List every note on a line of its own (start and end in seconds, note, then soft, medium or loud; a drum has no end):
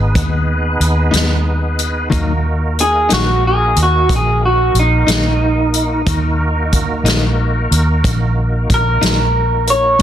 0.00 0.13 G#1 medium
0.00 2.09 B3 medium
0.00 2.09 D#4 medium
0.00 2.09 G#4 medium
0.00 2.08 B4 medium
0.15 0.77 D#2 medium
0.15 kick medium
0.15 closed hi-hat medium
0.80 1.11 D#2 medium
0.80 closed hi-hat medium
1.11 2.08 D#2 medium
1.11 1.33 G#2 medium
1.11 1.33 G#3 medium
1.11 1.33 B3 medium
1.11 1.32 D#4 medium
1.11 closed hi-hat medium
1.16 snare medium
1.79 closed hi-hat medium
2.10 3.07 D#2 medium
2.10 2.31 D#3 medium
2.10 2.31 F#3 medium
2.10 2.32 A#3 medium
2.10 6.02 A#3 medium
2.10 6.02 D#4 medium
2.10 2.32 D#4 medium
2.10 6.02 F#4 medium
2.10 6.02 A#4 medium
2.10 kick loud
2.10 closed hi-hat medium
2.79 3.11 G#4 medium
2.79 closed hi-hat medium
3.09 3.73 A#1 medium
3.09 3.31 D#3 soft
3.09 3.31 F#3 medium
3.09 3.30 A#3 medium
3.09 3.30 D#4 medium
3.09 snare medium
3.09 closed hi-hat medium
3.13 3.44 F#4 medium
3.47 3.77 G#4 medium
3.76 4.07 D#2 medium
3.76 closed hi-hat medium
3.83 4.12 F#4 medium
4.09 4.71 A#1 medium
4.09 kick loud
4.09 closed hi-hat medium
4.16 4.45 G#4 medium
4.45 4.76 F#4 medium
4.74 5.05 A#1 medium
4.74 closed hi-hat soft
4.79 6.70 D#4 medium
5.07 6.02 A#1 medium
5.07 5.28 D#3 medium
5.07 5.28 F#3 medium
5.07 5.28 A#3 medium
5.07 5.27 D#4 medium
5.07 snare medium
5.07 closed hi-hat medium
5.74 closed hi-hat medium
6.06 7.01 D#2 medium
6.06 9.96 A#3 medium
6.06 9.96 D#4 medium
6.06 9.97 F#4 medium
6.06 9.96 A#4 medium
6.06 kick medium
6.06 closed hi-hat medium
6.73 kick medium
6.73 closed hi-hat medium
7.03 7.66 A#1 medium
7.03 7.26 D#3 medium
7.03 7.25 F#3 medium
7.03 7.25 A#3 medium
7.03 7.25 D#4 medium
7.03 closed hi-hat medium
7.08 snare medium
7.71 8.01 D#2 medium
7.71 closed hi-hat medium
8.04 8.65 A#1 medium
8.04 kick medium
8.04 closed hi-hat medium
8.70 9.00 A#1 medium
8.70 kick medium
8.70 closed hi-hat medium
8.74 9.67 A#4 medium
9.01 9.96 A#1 medium
9.01 9.22 D#3 soft
9.01 9.22 F#3 medium
9.01 9.21 A#3 medium
9.01 9.21 D#4 medium
9.01 snare medium
9.01 closed hi-hat medium
9.67 10.01 C#5 medium
9.67 closed hi-hat soft
9.99 10.02 G#2 medium
9.99 10.02 D#4 medium